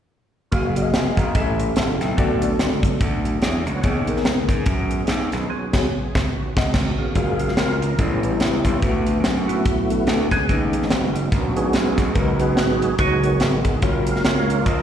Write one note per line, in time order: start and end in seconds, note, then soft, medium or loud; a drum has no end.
0.51 0.87 F#1 medium
0.51 1.33 F#3 medium
0.51 0.70 A#3 medium
0.51 1.33 A#3 medium
0.51 0.70 F#4 medium
0.51 1.33 G#4 medium
0.51 0.70 G#4 medium
0.51 1.33 F5 medium
0.51 0.71 F5 medium
0.51 kick medium
0.51 closed hi-hat medium
0.76 1.34 A#3 medium
0.76 1.34 F#4 medium
0.76 1.34 G#4 medium
0.76 0.81 D5 medium
0.76 closed hi-hat medium
0.82 1.34 D#5 medium
0.93 1.14 F1 medium
0.93 1.17 F5 medium
0.93 1.17 G#5 medium
0.93 snare loud
0.93 closed hi-hat medium
1.17 1.32 G#1 medium
1.17 1.58 F#5 soft
1.17 1.57 A#5 medium
1.17 kick medium
1.17 closed hi-hat medium
1.35 1.70 A1 medium
1.35 1.97 A2 medium
1.35 2.16 G3 medium
1.35 2.04 C#4 medium
1.35 2.16 C#4 medium
1.35 2.16 E4 medium
1.35 2.04 G4 medium
1.35 2.16 A4 medium
1.35 2.04 A4 medium
1.35 1.41 D#5 medium
1.35 kick loud
1.35 closed hi-hat medium
1.41 1.79 E5 medium
1.60 closed hi-hat medium
1.76 1.97 F#1 loud
1.76 2.00 F#5 soft
1.76 1.99 A5 medium
1.76 snare medium
1.76 closed hi-hat medium
2.00 2.15 B1 medium
2.00 2.41 E5 medium
2.00 2.40 G5 medium
2.00 snare soft
2.00 closed hi-hat medium
2.17 2.53 D2 medium
2.17 2.79 D3 medium
2.17 3.80 F#3 medium
2.17 3.80 B3 medium
2.17 2.35 B3 medium
2.17 3.80 D4 medium
2.17 2.36 F#4 medium
2.17 3.39 A4 medium
2.17 2.36 A4 medium
2.17 2.36 D5 medium
2.17 kick loud
2.17 closed hi-hat medium
2.42 3.00 B3 medium
2.42 3.00 F#4 medium
2.42 3.00 A4 medium
2.42 3.00 D5 medium
2.42 closed hi-hat medium
2.59 2.94 C#2 medium
2.59 snare loud
2.59 closed hi-hat medium
2.83 kick medium
2.83 closed hi-hat medium
3.01 3.36 D2 medium
3.01 kick loud
3.01 closed hi-hat medium
3.25 closed hi-hat medium
3.42 3.63 E2 medium
3.42 3.66 G#4 soft
3.42 3.65 C#5 medium
3.42 snare medium
3.42 closed hi-hat medium
3.66 3.81 C#2 medium
3.66 4.06 C#5 medium
3.66 4.05 F#5 medium
3.66 closed hi-hat medium
3.83 4.19 D#2 medium
3.83 4.45 D#3 medium
3.83 5.47 D#3 medium
3.83 4.01 B3 medium
3.83 5.47 B3 medium
3.83 5.47 C#4 medium
3.83 4.01 D#4 medium
3.83 4.02 G#4 medium
3.83 5.47 G#4 medium
3.83 4.02 C#5 medium
3.83 kick medium
3.83 closed hi-hat medium
4.07 4.66 B3 medium
4.07 4.66 D#4 medium
4.07 4.66 G#4 medium
4.07 4.66 A#4 medium
4.07 closed hi-hat medium
4.16 snare soft
4.25 4.46 C#2 medium
4.25 snare loud
4.25 closed hi-hat medium
4.48 4.63 G#2 medium
4.48 kick medium
4.48 closed hi-hat medium
4.66 5.02 F#2 medium
4.66 kick loud
4.66 closed hi-hat medium
4.91 closed hi-hat medium
5.07 5.29 D#2 medium
5.07 snare medium
5.07 closed hi-hat medium
5.32 5.47 B1 medium
5.32 snare soft
5.32 closed hi-hat medium
5.50 5.55 F3 medium
5.50 6.31 B3 medium
5.50 6.31 C#4 medium
5.50 6.31 G#4 medium
5.55 6.34 F#3 medium
5.73 5.85 C#2 medium
5.73 5.85 B3 medium
5.73 5.85 F#4 medium
5.73 5.86 G#4 medium
5.73 5.86 C#5 medium
5.73 kick loud
5.73 snare loud
5.73 crash medium
6.15 6.27 C#2 medium
6.15 kick loud
6.15 snare medium
6.32 7.14 D#3 medium
6.32 7.14 B3 medium
6.32 6.97 C#4 medium
6.32 6.38 F4 medium
6.38 7.17 F#4 medium
6.57 6.69 C#2 medium
6.57 6.69 D#5 medium
6.57 6.69 F#5 medium
6.57 kick loud
6.57 snare medium
6.74 6.91 C#2 loud
6.74 kick medium
6.74 snare loud
6.74 crash medium
6.98 7.57 C#4 medium
6.98 7.53 G#4 medium
6.98 7.77 F5 medium
7.15 7.51 F#1 medium
7.15 7.80 G#3 medium
7.15 7.45 G#3 medium
7.15 7.45 A#3 soft
7.15 7.81 F4 medium
7.15 7.46 F4 medium
7.15 7.81 F#4 medium
7.15 7.81 A#4 medium
7.15 kick medium
7.15 closed hi-hat medium
7.39 closed hi-hat medium
7.48 snare soft
7.57 7.92 C#2 medium
7.57 7.97 C#4 medium
7.57 7.97 F4 medium
7.57 8.01 A#4 medium
7.57 snare loud
7.57 closed hi-hat medium
7.82 closed hi-hat medium
7.98 8.34 A1 medium
7.98 8.61 A2 medium
7.98 8.18 G3 medium
7.98 8.78 G3 soft
7.98 8.78 B3 soft
7.98 8.18 C#4 medium
7.98 8.79 C#4 medium
7.98 8.18 E4 medium
7.98 8.79 E4 soft
7.98 8.85 G4 medium
7.98 8.19 A4 medium
7.98 kick loud
7.98 closed hi-hat medium
8.23 8.69 G3 medium
8.23 8.69 C#4 medium
8.23 8.69 E4 medium
8.23 8.69 B4 medium
8.23 closed hi-hat medium
8.40 8.61 C#2 medium
8.40 snare medium
8.40 closed hi-hat medium
8.64 8.79 B1 medium
8.64 kick medium
8.64 closed hi-hat medium
8.82 9.18 D2 medium
8.82 9.44 D3 medium
8.82 9.47 A3 medium
8.82 9.48 A3 medium
8.82 9.47 B3 medium
8.82 9.47 D4 medium
8.82 9.47 F#4 medium
8.82 9.48 F#4 medium
8.82 9.48 B4 medium
8.82 kick medium
8.82 closed hi-hat medium
9.06 closed hi-hat medium
9.24 9.67 F#2 medium
9.24 snare loud
9.24 closed hi-hat medium
9.48 10.04 F#3 medium
9.48 10.28 A3 medium
9.48 10.28 B3 medium
9.48 10.05 E4 medium
9.48 10.27 F#4 medium
9.48 closed hi-hat medium
9.65 10.01 B1 medium
9.65 kick loud
9.65 closed hi-hat medium
9.90 10.35 A3 medium
9.90 10.35 D4 medium
9.90 10.35 F#4 medium
9.90 10.36 A4 medium
9.90 closed hi-hat medium
10.07 10.28 D2 medium
10.07 snare medium
10.07 closed hi-hat medium
10.31 10.46 C#2 medium
10.31 10.89 B3 medium
10.31 10.48 C#4 medium
10.31 10.87 G#4 medium
10.31 kick medium
10.31 snare soft
10.31 closed hi-hat medium
10.48 10.85 D#2 medium
10.48 11.11 D#3 medium
10.48 11.11 G#3 soft
10.48 11.14 G#3 medium
10.48 11.14 C#4 medium
10.48 10.89 C#4 medium
10.48 11.14 D#4 medium
10.48 11.12 D#4 medium
10.48 11.14 B4 medium
10.48 kick medium
10.48 closed hi-hat medium
10.73 closed hi-hat medium
10.82 snare soft
10.90 11.26 F#1 medium
10.90 11.55 B3 medium
10.90 11.13 C#4 medium
10.90 11.29 F#4 medium
10.90 snare loud
10.90 closed hi-hat medium
11.14 11.30 G#3 medium
11.14 11.30 C#4 soft
11.14 11.31 D#4 soft
11.14 closed hi-hat medium
11.32 11.68 A#1 medium
11.32 11.55 C#4 soft
11.32 12.12 F#4 medium
11.32 11.43 A#4 medium
11.32 kick loud
11.32 closed hi-hat medium
11.56 12.02 G#3 medium
11.56 12.12 B3 medium
11.56 12.12 C#4 medium
11.56 12.02 C#4 medium
11.56 12.02 D#4 medium
11.56 12.17 G#4 loud
11.56 12.03 B4 medium
11.56 closed hi-hat medium
11.73 11.95 B1 medium
11.73 snare medium
11.73 closed hi-hat medium
11.98 12.13 B1 medium
11.98 kick medium
11.98 snare soft
11.98 closed hi-hat medium
12.14 12.58 C#2 medium
12.14 12.77 C#3 medium
12.14 12.95 F#3 medium
12.14 12.80 G#3 medium
12.14 12.95 B3 medium
12.14 12.80 C#4 medium
12.14 12.95 D#4 medium
12.14 12.80 F#4 medium
12.14 12.39 F#4 medium
12.14 12.21 A#4 medium
12.14 12.39 A#4 medium
12.14 kick medium
12.14 closed hi-hat medium
12.21 12.83 B4 medium
12.40 12.95 F#4 medium
12.40 12.95 G#4 medium
12.40 12.79 B4 loud
12.40 closed hi-hat medium
12.57 12.93 G#1 medium
12.57 snare loud
12.57 closed hi-hat medium
12.82 closed hi-hat medium
12.99 13.34 C#2 medium
12.99 13.61 C#3 medium
12.99 13.62 F#3 soft
12.99 13.19 B3 medium
12.99 13.42 B3 soft
12.99 13.19 D#4 medium
12.99 13.41 D#4 soft
12.99 13.19 F#4 medium
12.99 13.79 F#4 medium
12.99 13.41 G#4 medium
12.99 13.19 C#5 medium
12.99 13.43 C#5 medium
12.99 kick loud
12.99 closed hi-hat medium
13.23 13.69 B3 medium
13.23 13.69 D#4 medium
13.23 13.69 F#4 medium
13.23 13.69 A#4 medium
13.23 closed hi-hat medium
13.40 13.76 G#1 medium
13.40 13.81 B3 medium
13.40 13.81 D#4 medium
13.40 13.85 G#4 medium
13.40 snare medium
13.40 closed hi-hat medium
13.65 kick medium
13.65 closed hi-hat medium
13.82 14.18 F#1 medium
13.82 14.47 A#3 medium
13.82 14.63 C#4 medium
13.82 14.48 F4 medium
13.82 14.48 F#4 medium
13.82 14.22 A#4 loud
13.82 14.48 C#5 medium
13.82 kick medium
13.82 closed hi-hat medium
14.07 14.64 G#3 soft
14.07 14.64 A#3 soft
14.07 14.65 F5 medium
14.07 closed hi-hat medium
14.16 snare soft
14.24 14.60 C#2 medium
14.24 14.82 F4 medium
14.24 14.65 A#4 medium
14.24 14.62 C#5 medium
14.24 snare loud
14.24 closed hi-hat medium
14.50 closed hi-hat medium
14.59 14.66 D5 medium
14.66 14.82 A#1 loud
14.66 14.82 A#4 medium
14.66 14.82 D#5 medium
14.66 kick loud
14.66 closed hi-hat medium